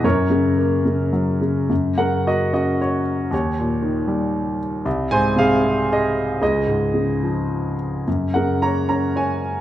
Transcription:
<<
  \new Staff \with { instrumentName = "Grand piano" } { \time 3/4 \key fis \mixolydian \tempo 4 = 113 <ais' cis''>2 r4 | \key fis \major r8 <ais' fis''>8 <fis' dis''>8 <fis' dis''>8 <fis' cis''>4 | <g' cis''>2~ <g' cis''>8 r8 | r8 <bis' gis''>8 <gis' eis''>4 <gis' dis''>4 |
<gis' dis''>2~ <gis' dis''>8 r8 | r8 <ais' fis''>8 <cis'' ais''>8 <cis'' ais''>8 <cis'' gis''>4 | }
  \new Staff \with { instrumentName = "Grand piano" } { \clef bass \time 3/4 \key fis \mixolydian fis,8 cis8 ais8 cis8 fis8 cis8 | \key fis \major fis,8 cis8 ais8 cis'4. | dis,8 ais,8 dis8 g4. | bis,,8 gis,8 bis,8 bis4. |
cis,8 gis,8 cis8 eis4. | fis,8 cis8 ais8 cis'4. | }
>>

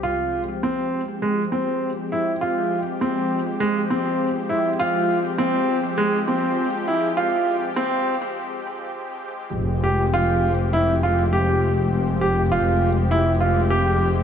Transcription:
<<
  \new Staff \with { instrumentName = "Upright piano" } { \time 4/4 \key f \minor \tempo 4 = 101 f'4 c'4 aes8 c'4 e'8 | f'4 c'4 aes8 c'4 e'8 | f'4 c'4 aes8 c'4 e'8 | f'4 c'4 r2 |
r8 g'8 f'4 e'8 f'8 g'4 | r8 g'8 f'4 e'8 f'8 g'4 | }
  \new Staff \with { instrumentName = "Analog synth pad" } { \time 4/4 \key f \minor <f aes c' g'>1~ | <f aes c' g'>1~ | <f aes c' g'>1~ | <f aes c' g'>1 |
<f aes c' g'>1~ | <f aes c' g'>1 | }
  \new Staff \with { instrumentName = "Double bass section" } { \clef bass \time 4/4 \key f \minor r1 | r1 | r1 | r1 |
f,,1~ | f,,1 | }
>>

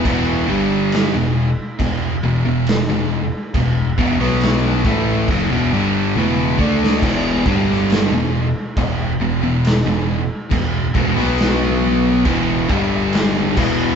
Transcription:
<<
  \new Staff \with { instrumentName = "Distorted electric guitar" } { \clef bass \time 4/4 \key e \minor \tempo 4 = 69 <e, b, e>8 <g, d g>8. <e, b,>8 r16 <e, b,>8 <e, b,>16 <e, b,>8 <e, b,>8 r16 | <e, b,>8 <e, b,>16 <b, fis b>8. <a, e a>8 <fis, cis>16 <e, b,>16 <g, d g>8 <e, b, e>8 <d a d'>8 | <e, b, e>8 <g, d g>8. <e, b,>8 r16 <e, b,>8 <e, b,>16 <e, b,>8 <e, b,>8 r16 | <e, b,>8 <e, b,>16 <b, fis b>4~ <b, fis b>16 <e, b, e>8 <g, d g>4 <e, b, e>8 | }
  \new Staff \with { instrumentName = "Distorted electric guitar" } { \clef bass \time 4/4 \key e \minor <e, b, e>8 <g, d g>8. <e, b,>8 r16 <e, b,>8 <e, b,>16 <e, b,>8 <e, b,>8 r16 | <e, b,>8 <e, b,>16 <b, fis b>8. <a, e a>8 <fis, cis>16 <e, b,>16 <g, d g>8 <e, b, e>8 <d a d'>8 | <e, b, e>8 <g, d g>8. <e, b,>8 r16 <e, b,>8 <e, b,>16 <e, b,>8 <e, b,>8 r16 | <e, b,>8 <e, b,>16 <b, fis b>4~ <b, fis b>16 <e, b, e>8 <g, d g>4 <e, b, e>8 | }
  \new Staff \with { instrumentName = "Overdriven electric guitar" } { \clef bass \time 4/4 \key e \minor <e, b, e>8 <g, d g>8. <e, b,>8 r16 <e, b,>8 <e, b,>16 <e, b,>8 <e, b,>8 r16 | <e, b,>8 <e, b,>16 <b, fis b>8. <a, e a>8 <fis, cis>16 <e, b,>16 <g, d g>8 <e, b, e>8 <d a d'>8 | <e, b, e>8 <g, d g>8. <e, b,>8 r16 <e, b,>8 <e, b,>16 <e, b,>8 <e, b,>8 r16 | <e, b,>8 <e, b,>16 <b, fis b>4~ <b, fis b>16 <e, b, e>8 <g, d g>4 <e, b, e>8 | }
  \new Staff \with { instrumentName = "Picked electric bass" } { \clef bass \time 4/4 \key e \minor e,,8 g,,8. e,,8 r16 e,,8 e,,16 e,,8 e,,8 r16 | e,,8 e,,16 b,,8. a,,8 fis,,16 e,,16 g,,8 e,,8 d,8 | e,,8 g,,8. e,,8 r16 e,,8 e,,16 e,,8 e,,8 r16 | e,,8 e,,16 b,,4~ b,,16 e,,8 g,,4 e,,8 | }
  \new DrumStaff \with { instrumentName = "Drums" } \drummode { \time 4/4 <cymc bd>4 <cymc sn>4 <cymc bd>4 <cymc sn>4 | <cymc bd>8 bd16 sn16 <cymc sn>8 bd8 <cymc bd>4 tommh8 bd16 sn16 | <cymc bd>8 bd16 sn16 <cymc sn>4 <cymc bd>4 <cymc sn>4 | <cymc bd>8 bd16 sn16 <cymc sn>4 <cymc bd>8 bd8 <cymc sn>8 <cymc bd>8 | }
>>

